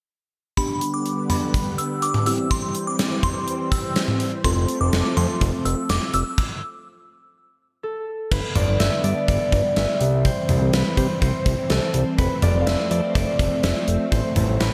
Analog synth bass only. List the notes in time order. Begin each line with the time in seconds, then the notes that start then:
4.44 F1
4.56 F1
4.81 F1
4.93 F1
5.17 F2
5.41 F1
5.65 F1
5.90 F1
6.14 F1
8.32 G1
8.56 G1
8.68 G1
8.80 G1
9.04 G2
9.28 G1
9.52 G1
9.77 G1
10.01 C2
10.49 C2
10.61 C2
10.73 C2
10.97 C3
11.22 C2
11.46 C2
11.70 C2
11.94 C2
12.18 F1
12.43 F1
12.55 F1
12.67 F1
12.91 F2
13.15 F1
13.39 F1
13.64 F1
13.88 F1
14.12 A1
14.36 A1
14.48 A1
14.60 A1